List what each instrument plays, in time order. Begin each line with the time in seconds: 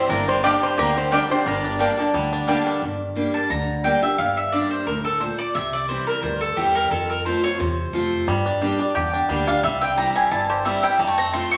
Already playing: five-string banjo G3, fiddle C4
0.09 upright bass G1, steel-string acoustic guitar G2, fiddle A#3, five-string banjo D4, resonator guitar played with a steel bar A#4
0.27 five-string banjo G3, fiddle C4, resonator guitar played with a steel bar C5
0.43 steel-string acoustic guitar G3 A#3 D4 G4, mandolin A#3 G4 D5 G5, fiddle D4, five-string banjo G4, resonator guitar played with a steel bar D5
0.62 five-string banjo G3, fiddle C4, resonator guitar played with a steel bar C5
0.77 upright bass D2, steel-string acoustic guitar D3, fiddle A#3, five-string banjo G4, resonator guitar played with a steel bar A#4
0.96 five-string banjo G3, fiddle C4, resonator guitar played with a steel bar C5
1.11 steel-string acoustic guitar G3 A#3 D4 G4, mandolin A#3 G4 D5 G5, fiddle D4, five-string banjo G4, resonator guitar played with a steel bar D5
1.29 fiddle C4, five-string banjo D4, steel-string acoustic guitar D4 G4, resonator guitar played with a steel bar C5
1.46 upright bass G1, steel-string acoustic guitar G2, five-string banjo G3, fiddle D4, resonator guitar played with a steel bar A#4
1.64 five-string banjo D4
1.79 steel-string acoustic guitar G3 A#3 D4 A4, mandolin A#3 G4 D5 A5, five-string banjo D4
1.98 five-string banjo D3, steel-string acoustic guitar D4 A4
2.14 upright bass D2, steel-string acoustic guitar D3, five-string banjo G3
2.32 five-string banjo D4
2.47 steel-string acoustic guitar G3 A#3 D4 A4, five-string banjo G3, mandolin A#3 G4 D5 A5
2.67 five-string banjo D4
2.82 upright bass G1, steel-string acoustic guitar G2
3.15 steel-string acoustic guitar G3 A#3 D4 G4
3.34 mandolin A5
3.50 upright bass D2, steel-string acoustic guitar D3, mandolin A#5
3.84 steel-string acoustic guitar G3 A#3 D4 G4, mandolin G5
4.02 steel-string acoustic guitar D4 G4, mandolin E5
4.18 upright bass G1, mandolin F5
4.37 mandolin E5
4.52 steel-string acoustic guitar G3 A#3 D4 G4, mandolin D5
4.71 mandolin C5
4.87 upright bass D2, steel-string acoustic guitar A2, mandolin A#4
5.05 mandolin A4
5.20 steel-string acoustic guitar A#2, mandolin C5
5.39 mandolin D5
5.55 upright bass C2, steel-string acoustic guitar C3, mandolin E5
5.73 mandolin D5
5.89 steel-string acoustic guitar E3 G3 C4 E4, mandolin C5
6.07 mandolin A#4
6.22 upright bass D2, steel-string acoustic guitar G2, mandolin C5
6.41 mandolin A4
6.57 upright bass E2, steel-string acoustic guitar E3 G3 C4 E4, mandolin G4
6.75 mandolin A#4
6.91 steel-string acoustic guitar F2, upright bass F2, mandolin A4
7.10 mandolin A#4
7.25 steel-string acoustic guitar F3 A3 C4 F4, mandolin C5
7.43 steel-string acoustic guitar C4 F4, mandolin C#5
7.60 upright bass E2, steel-string acoustic guitar C3, mandolin C5
7.93 upright bass F2, steel-string acoustic guitar F3 A3 C4 F4
8.27 upright bass G2, steel-string acoustic guitar G2, five-string banjo G3
8.46 five-string banjo D4
8.61 steel-string acoustic guitar G3 A#3 D4 G4, five-string banjo G3
8.79 five-string banjo D4, steel-string acoustic guitar D4 G4
8.95 upright bass E2, steel-string acoustic guitar D3, five-string banjo G4, mandolin G5
9.13 five-string banjo D4
9.29 upright bass D2, five-string banjo G3, steel-string acoustic guitar G3 A#3 D4 G4
9.47 five-string banjo D4, steel-string acoustic guitar D4 G4, mandolin F5
9.63 upright bass C2, steel-string acoustic guitar C3, five-string banjo G3, mandolin E5
9.82 five-string banjo C4, mandolin G5
9.96 steel-string acoustic guitar E3 G3 C4 E4, five-string banjo G3, mandolin A#5
10.16 five-string banjo C4, mandolin G#5
10.31 upright bass G1, steel-string acoustic guitar G2, five-string banjo E4, mandolin A5
10.49 five-string banjo G4, mandolin C5
10.65 steel-string acoustic guitar E3 G3 C4 E4, five-string banjo G3, mandolin E5
10.83 five-string banjo E4, mandolin G5
10.99 upright bass F2, steel-string acoustic guitar F2, five-string banjo G3, mandolin A5
11.07 five-string banjo A3
11.18 five-string banjo C4, mandolin A#5
11.32 steel-string acoustic guitar F3 A3 C4 F4, five-string banjo A3, mandolin C6
11.51 five-string banjo C4, mandolin C#6